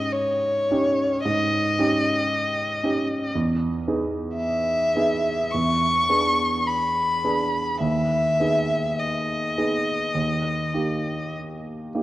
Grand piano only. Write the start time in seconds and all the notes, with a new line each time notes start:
Already playing: G#2 C#4 D#4 G4
0.71 C#4 D#4 G4
1.25 G#2
1.79 C#4 D#4 G4
2.84 C#4 D#4 G4
3.35 E2
3.88 B3 D#4 G#4
4.96 B3 D#4 G#4
5.54 E2
6.09 B3 D4 G#4
7.24 B3 D4 G#4
7.80 D#2
8.40 B3 D#4 G#4
9.58 B3 D#4 G#4
10.15 D#2
10.74 A#3 D#4 G4
11.95 A#3 D#4 G4